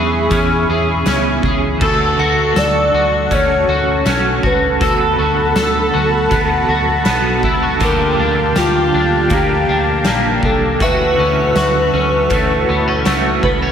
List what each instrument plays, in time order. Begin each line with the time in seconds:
Already playing: fingered electric bass E2, clean electric guitar E3 B3 C#4 G#4 B4, soft synth lead G#4, analog synth pad G#4 E5 B5 C#6
0.29 fingered electric bass E2, clean electric guitar E3 B3 C#4, kick, closed hi-hat
0.34 clean electric guitar G#4
0.69 fingered electric bass E2, clean electric guitar G#4
1.04 fingered electric bass C#2, clean electric guitar E3 B3 C#4, snare, closed hi-hat, tambourine
1.09 clean electric guitar G#4
1.43 fingered electric bass C#2, clean electric guitar G#4, kick
1.77 clean electric guitar D3 A3, analog synth pad A4 F#5 A5 C#6, kick, crash
1.81 fingered electric bass D2, clean electric guitar F#4 A4, soft synth lead A4
1.86 clean electric guitar A4
2.18 fingered electric bass D2, clean electric guitar F#4, synth bell F#5
2.56 fingered electric bass D2, clean electric guitar A4, soft synth lead D5, snare, closed hi-hat, tambourine
2.93 fingered electric bass D2, clean electric guitar F#4
3.31 fingered electric bass D2, clean electric guitar A3 C#4 F#4, soft synth lead C#5, kick, closed hi-hat
3.35 clean electric guitar A4
3.68 fingered electric bass D2, clean electric guitar F#4
4.04 fingered electric bass B1, clean electric guitar A3 C#4 F#4, snare, closed hi-hat, tambourine
4.09 clean electric guitar A4
4.43 fingered electric bass C#2, clean electric guitar F#4, soft synth lead B4, kick
4.79 fingered electric bass D2, clean electric guitar D3 F#3 A4, analog synth pad F#5 B5, kick, closed hi-hat
4.83 clean electric guitar B3 F#4, soft synth lead A4
4.88 clean electric guitar A4
5.18 fingered electric bass D2, clean electric guitar F#4
5.56 fingered electric bass D2, clean electric guitar A4, snare, closed hi-hat, tambourine
5.94 fingered electric bass D2, clean electric guitar F#4
6.30 fingered electric bass D2, clean electric guitar F#3 B3 F#4, kick, closed hi-hat
6.35 clean electric guitar A4
6.68 fingered electric bass D2, clean electric guitar F#4
7.03 fingered electric bass B1, clean electric guitar F#3 B3 F#4, snare, closed hi-hat, tambourine
7.09 clean electric guitar A4
7.43 fingered electric bass C#2, clean electric guitar E4, kick
7.63 clean electric guitar F#4
7.77 fingered electric bass D2, clean electric guitar D3 F3, analog synth pad G4 F5 G5, kick, closed hi-hat
7.82 clean electric guitar A#3 D4 G4, soft synth lead A#4
8.18 fingered electric bass D2, clean electric guitar D4
8.56 fingered electric bass D2, soft synth lead F4, clean electric guitar G4, snare, closed hi-hat, tambourine
8.94 fingered electric bass D2, clean electric guitar D4
9.29 fingered electric bass D2, clean electric guitar F3 A#3 D4, kick, closed hi-hat
9.34 soft synth lead G4, clean electric guitar G4
9.69 fingered electric bass D2, clean electric guitar D4
10.04 fingered electric bass A#1, clean electric guitar F3 A#3 D4, snare, closed hi-hat, tambourine
10.09 clean electric guitar G4
10.43 fingered electric bass C2, clean electric guitar D4, soft synth lead A4, kick
10.79 fingered electric bass D2, clean electric guitar D3 E3 F#4, analog synth pad A4 F#5 C#6 E6, soft synth lead B4, synth bell E5, kick, closed hi-hat
10.83 clean electric guitar A3 C#4 F#4
11.18 fingered electric bass D2, clean electric guitar C#4
11.56 fingered electric bass D2, clean electric guitar F#4, snare, closed hi-hat, tambourine
11.93 fingered electric bass D2, clean electric guitar C#4
12.29 fingered electric bass D2, clean electric guitar E3 A3, kick, closed hi-hat
12.33 clean electric guitar C#4 F#4
12.68 fingered electric bass D2, clean electric guitar B3
12.88 clean electric guitar C#4
13.04 fingered electric bass C#2, clean electric guitar E3 A3, snare, closed hi-hat, tambourine
13.08 clean electric guitar C#4 F#4
13.43 fingered electric bass C#2, clean electric guitar B3, synth bell B4, kick
13.62 clean electric guitar C#4